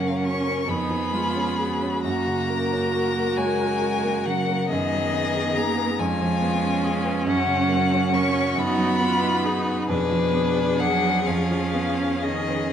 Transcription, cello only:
Already playing: F#3
0.25 C#4
0.69 B3
2.04 A#3
3.36 G#3
4.25 F#3
4.70 D#3
5.56 A#3
6.00 G#3
7.27 F#3
8.14 C#4
8.58 B3
9.89 B2
10.80 F#3
11.27 F3
12.24 D#3

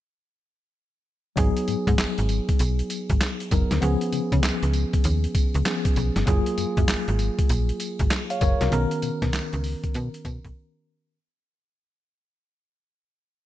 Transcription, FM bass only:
1.37 G#1
1.68 G#2
1.87 G#2
1.99 G#1
2.19 G#1
2.60 B1
3.10 G#1
3.52 F#1
3.71 D2
3.82 C#2
4.13 C#3
4.32 C#3
4.44 C#2
4.63 C#2
5.05 D#2
5.55 C#2
5.97 B1
6.16 G1
6.27 F#1
6.58 F#2
6.77 F#2
6.89 G#1
7.08 G#1
7.50 A#1
8.00 G#1
8.42 F#1
8.61 C2
8.72 B1
9.03 B2
9.22 B2
9.34 C#2
9.53 C#2
9.95 B2
10.25 B2
10.45 B1

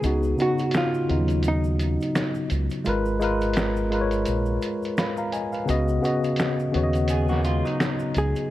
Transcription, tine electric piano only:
0.01 C#3 B3 D#4
0.06 F#4
0.36 C#3 B3 D#4
0.41 F#4
1.08 C#3 B3 D#4
1.12 F4
1.19 F#3
2.84 G#3 F4 A#4
2.89 B4
3.20 G#3 F4 A#4
3.24 B4
3.91 G#3 F4 A#4
3.95 B4
4.01 C#5
4.99 F5 B5
5.18 F5 A#5
5.33 D#5 G#5
5.53 B4 F5
5.65 C#3 B3 F#4
5.70 D#5
6.01 C#3 B3 F#4
6.06 D#5
6.72 C#3 B3 F#4
6.77 C#5
6.83 D#5

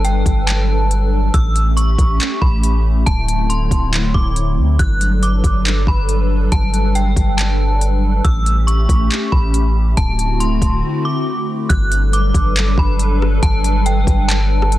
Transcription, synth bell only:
0.05 G5
0.47 A5
1.34 E6
1.77 C#6
2.42 B5
3.06 A5
3.50 C6
4.14 D6
4.79 F#6
5.23 D6
5.88 B5
6.52 A5
6.95 G5
7.37 A5
8.24 E6
8.67 C#6
9.32 B5
9.97 A5
10.40 C6
11.05 D6
11.69 F#6
12.13 D6
12.79 B5
13.43 A5
13.86 G5
14.28 A5

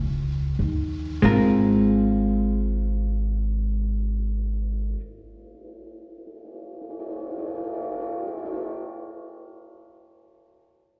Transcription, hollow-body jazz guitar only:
Already playing: G3 C#4 E4
1.22 G#3 C4 F4 A#4

